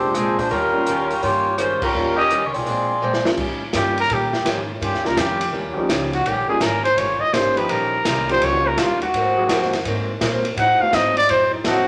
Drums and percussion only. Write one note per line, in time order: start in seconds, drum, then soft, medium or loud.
0.15 cross-stick medium
0.15 closed hi-hat medium
0.39 open hi-hat soft
0.51 open hi-hat soft
0.86 closed hi-hat medium
1.10 open hi-hat soft
1.23 open hi-hat soft
1.58 cross-stick medium
1.58 closed hi-hat medium
1.82 kick medium
1.82 crash medium
2.30 closed hi-hat medium
2.54 open hi-hat soft
2.66 open hi-hat soft
3.13 snare medium
3.25 snare medium
3.37 kick medium
3.37 crash medium
3.73 snare medium
3.73 hi-hat pedal medium
3.73 ride medium
3.98 ride soft
4.10 ride medium
4.33 snare soft
4.45 snare medium
4.45 hi-hat pedal medium
4.45 ride medium
4.82 ride medium
4.94 snare soft
5.05 snare soft
5.17 snare medium
5.17 hi-hat pedal medium
5.17 ride medium
5.41 ride medium
5.89 snare medium
5.89 hi-hat pedal medium
5.89 ride medium
6.13 ride soft
6.26 ride medium
6.61 snare medium
6.61 hi-hat pedal medium
6.61 ride medium
6.85 ride soft
6.98 ride medium
7.33 snare medium
7.33 hi-hat pedal medium
7.33 ride medium
7.57 ride soft
7.69 ride medium
8.05 snare medium
8.05 hi-hat pedal medium
8.05 ride medium
8.29 ride soft
8.42 ride medium
8.77 snare medium
8.77 hi-hat pedal medium
8.77 ride medium
9.02 ride soft
9.14 ride medium
9.49 snare medium
9.49 hi-hat pedal medium
9.49 ride medium
9.62 snare soft
9.73 snare soft
9.73 ride medium
9.85 ride medium
10.21 snare medium
10.21 hi-hat pedal medium
10.21 ride medium
10.45 ride soft
10.57 ride medium
10.93 snare medium
10.93 hi-hat pedal medium
10.93 ride medium
11.17 ride soft
11.29 ride medium
11.64 snare medium
11.64 hi-hat pedal medium
11.64 ride medium